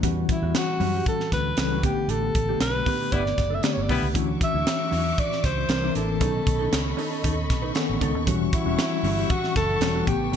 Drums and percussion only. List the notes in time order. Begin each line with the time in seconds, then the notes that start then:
0.03 kick, closed hi-hat
0.29 kick, closed hi-hat
0.55 snare, closed hi-hat
0.80 open hi-hat
1.06 kick, closed hi-hat
1.20 snare
1.32 kick, snare, closed hi-hat
1.57 snare, closed hi-hat
1.83 kick, closed hi-hat
2.09 closed hi-hat
2.35 kick, closed hi-hat
2.61 snare, closed hi-hat
2.86 kick, open hi-hat
3.12 kick, closed hi-hat
3.26 snare
3.38 kick, snare, closed hi-hat
3.63 snare, closed hi-hat
3.89 kick, open hi-hat
4.15 kick, closed hi-hat
4.41 kick, closed hi-hat
4.67 snare, closed hi-hat
4.93 open hi-hat
5.18 kick, closed hi-hat
5.32 snare
5.44 kick, snare, closed hi-hat
5.69 snare, closed hi-hat
5.95 closed hi-hat
6.21 kick, closed hi-hat
6.47 kick, closed hi-hat
6.73 snare, closed hi-hat
6.99 open hi-hat
7.24 kick, closed hi-hat
7.50 kick, snare, closed hi-hat
7.75 snare, closed hi-hat
8.01 kick, closed hi-hat
8.27 kick, closed hi-hat
8.53 kick, closed hi-hat
8.79 snare, closed hi-hat
9.04 open hi-hat
9.30 kick, closed hi-hat
9.44 snare
9.56 kick, snare, closed hi-hat
9.81 snare, closed hi-hat
10.07 kick, closed hi-hat
10.33 closed hi-hat